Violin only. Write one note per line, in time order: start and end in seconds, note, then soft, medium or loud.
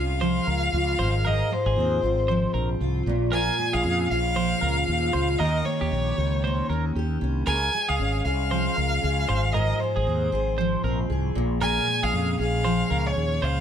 0.00 1.28 F5 loud
1.26 1.54 D#5 medium
1.53 2.55 C5 medium
3.34 3.75 G#5 loud
3.74 4.10 F5 loud
4.10 5.40 F5 loud
5.39 5.67 D#5 loud
5.65 6.69 C#5 medium
7.47 7.91 G#5 loud
7.89 8.24 F5 medium
8.25 9.54 F5 loud
9.53 9.82 D#5 loud
9.80 10.84 C5 medium
11.62 12.05 G#5 loud
12.03 12.39 F5 loud
12.40 13.08 F5 loud
13.07 13.46 C#5 medium
13.44 13.61 F5 medium